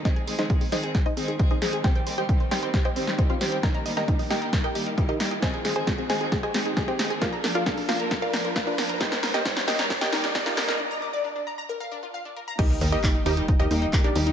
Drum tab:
CC |----------------|----------------|----------------|----------------|
HH |xxoxxooxxxoxxxox|xxoxxxoxxxoxxxox|xxoxxooxxxoxxxox|xxo-xxoxxxoxxxox|
CP |----------------|----------------|----------------|----------------|
SD |o--o--o-o-----o-|o-----o-o--o--o-|o--o--o-o-----o-|o-o-o-o-o-o-o-o-|
BD |o---o---o---o---|o---o---o---o---|o---o---o---o---|o---o---o---o---|

CC |----------------|----------------|----------------|x---------------|
HH |xxoxxooxxxoxxxox|xxoxxxoxxxoxxxox|----------------|xxoxxxoxxxoxxxox|
CP |----------------|----------------|----------------|----x-------x---|
SD |o-o-o-o-o-o-o-o-|oooooooooooooooo|----------------|----------------|
BD |o---o---o---o---|o---o---o---o---|----------------|o---o---o---o---|